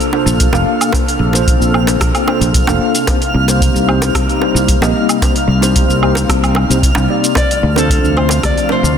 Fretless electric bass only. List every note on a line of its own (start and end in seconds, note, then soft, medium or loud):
0.26 0.46 A#1 medium
0.52 0.63 F1 medium
1.19 1.55 A#1 medium
1.60 1.95 A#1 medium
2.00 2.11 A#1 medium
2.41 2.61 A#1 loud
2.67 2.77 F1 medium
3.34 3.69 C2 loud
3.74 4.09 C2 medium
4.14 4.25 C2 medium
4.54 4.75 C2 medium
4.81 4.91 A#1 medium
5.48 5.83 C2 loud
5.88 6.23 C2 medium
6.29 6.64 C2 medium
6.70 6.89 C2 medium
6.96 7.06 C2 medium
7.63 7.98 D2 loud
8.03 8.38 D2 medium
8.43 8.54 D2 medium
8.83 8.98 D2 loud